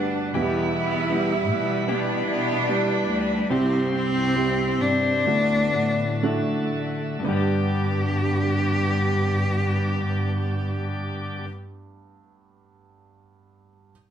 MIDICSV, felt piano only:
0, 0, Header, 1, 2, 480
1, 0, Start_track
1, 0, Key_signature, 1, "major"
1, 0, Tempo, 775194
1, 213, Time_signature, 4, 2, 24, 8
1, 1658, Tempo, 839161
1, 2618, Tempo, 904977
1, 3098, Tempo, 966184
1, 3578, Tempo, 1023891
1, 4058, Tempo, 1039861
1, 7222, End_track
2, 0, Start_track
2, 0, Title_t, "Felt piano"
2, 0, Program_c, 0, 0
2, 0, Control_c, 0, 64, 127
2, 0, Note_on_c, 0, 55, 89
2, 0, Note_on_c, 0, 59, 80
2, 0, Note_on_c, 0, 62, 79
2, 0, Note_on_c, 0, 66, 96
2, 0, Note_on_c, 0, 67, 66
2, 192, Note_off_c, 0, 55, 0
2, 193, Note_off_c, 0, 62, 0
2, 194, Note_off_c, 0, 59, 0
2, 194, Note_off_c, 0, 66, 0
2, 214, Note_on_c, 0, 55, 69
2, 218, Note_on_c, 0, 64, 66
2, 219, Note_on_c, 0, 47, 68
2, 219, Note_on_c, 0, 59, 66
2, 221, Control_c, 0, 64, 0
2, 222, Note_on_c, 0, 66, 62
2, 226, Note_off_c, 0, 67, 0
2, 257, Note_off_c, 0, 66, 0
2, 259, Note_on_c, 0, 67, 77
2, 343, Control_c, 0, 64, 127
2, 660, Note_off_c, 0, 55, 0
2, 662, Note_off_c, 0, 64, 0
2, 663, Note_off_c, 0, 59, 0
2, 681, Note_off_c, 0, 67, 0
2, 686, Note_on_c, 0, 55, 74
2, 686, Note_on_c, 0, 59, 70
2, 689, Note_on_c, 0, 64, 63
2, 690, Note_on_c, 0, 67, 76
2, 901, Note_off_c, 0, 47, 0
2, 1141, Note_off_c, 0, 55, 0
2, 1141, Note_off_c, 0, 59, 0
2, 1143, Note_off_c, 0, 64, 0
2, 1143, Note_off_c, 0, 67, 0
2, 1162, Note_on_c, 0, 55, 73
2, 1163, Note_on_c, 0, 59, 66
2, 1165, Note_on_c, 0, 64, 67
2, 1166, Note_on_c, 0, 67, 82
2, 1632, Note_off_c, 0, 55, 0
2, 1632, Note_off_c, 0, 59, 0
2, 1633, Note_off_c, 0, 64, 0
2, 1634, Note_off_c, 0, 67, 0
2, 1658, Note_on_c, 0, 59, 68
2, 1660, Note_on_c, 0, 55, 70
2, 1662, Note_on_c, 0, 64, 63
2, 1663, Note_on_c, 0, 67, 79
2, 2104, Note_off_c, 0, 59, 0
2, 2106, Note_off_c, 0, 55, 0
2, 2106, Note_off_c, 0, 64, 0
2, 2107, Note_off_c, 0, 67, 0
2, 2125, Note_on_c, 0, 55, 69
2, 2128, Note_on_c, 0, 60, 66
2, 2128, Note_on_c, 0, 64, 71
2, 2130, Note_on_c, 0, 43, 65
2, 2131, Note_on_c, 0, 66, 66
2, 2137, Control_c, 0, 64, 0
2, 2169, Note_on_c, 0, 67, 80
2, 2170, Note_off_c, 0, 66, 0
2, 2233, Control_c, 0, 64, 127
2, 2592, Note_off_c, 0, 55, 0
2, 2593, Note_off_c, 0, 60, 0
2, 2593, Note_off_c, 0, 64, 0
2, 2614, Note_off_c, 0, 67, 0
2, 2618, Note_on_c, 0, 55, 73
2, 2619, Note_on_c, 0, 64, 71
2, 2620, Note_on_c, 0, 60, 66
2, 2623, Note_on_c, 0, 67, 77
2, 2834, Note_off_c, 0, 43, 0
2, 3073, Note_off_c, 0, 55, 0
2, 3074, Note_off_c, 0, 60, 0
2, 3074, Note_off_c, 0, 64, 0
2, 3075, Note_off_c, 0, 67, 0
2, 3101, Note_on_c, 0, 57, 70
2, 3102, Note_on_c, 0, 62, 68
2, 3102, Note_on_c, 0, 64, 64
2, 3103, Note_on_c, 0, 45, 53
2, 3104, Note_on_c, 0, 66, 76
2, 3105, Control_c, 0, 64, 0
2, 3187, Control_c, 0, 64, 127
2, 3555, Note_off_c, 0, 57, 0
2, 3555, Note_off_c, 0, 62, 0
2, 3556, Note_off_c, 0, 64, 0
2, 3557, Note_off_c, 0, 66, 0
2, 3579, Note_on_c, 0, 57, 94
2, 3582, Note_on_c, 0, 62, 72
2, 3582, Note_on_c, 0, 64, 77
2, 3584, Note_on_c, 0, 66, 88
2, 3799, Note_off_c, 0, 45, 0
2, 4034, Note_off_c, 0, 57, 0
2, 4035, Note_off_c, 0, 62, 0
2, 4035, Note_off_c, 0, 64, 0
2, 4036, Note_off_c, 0, 66, 0
2, 4047, Note_on_c, 0, 59, 81
2, 4059, Note_on_c, 0, 62, 68
2, 4060, Note_on_c, 0, 43, 83
2, 4064, Control_c, 0, 64, 0
2, 4068, Note_on_c, 0, 67, 81
2, 4141, Control_c, 0, 64, 127
2, 5983, Note_off_c, 0, 59, 0
2, 5995, Note_off_c, 0, 43, 0
2, 5995, Note_off_c, 0, 62, 0
2, 6004, Note_off_c, 0, 67, 0
2, 7135, Control_c, 0, 64, 0
2, 7222, End_track
0, 0, End_of_file